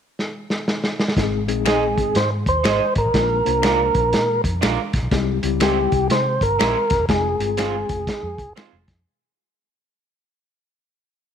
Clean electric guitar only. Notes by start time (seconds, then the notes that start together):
1.65 D#4 G#4 C5 D#5
2.64 D#4 G#4 C5 D#5
3.62 D4 F4 A#4 D5
4.61 D4 F4 A#4 D5
5.60 C4 E4 G4 C5
6.59 C4 E4 G4 C5
7.58 C4 F4 G#4 C5
8.56 C4 F4 G#4 C5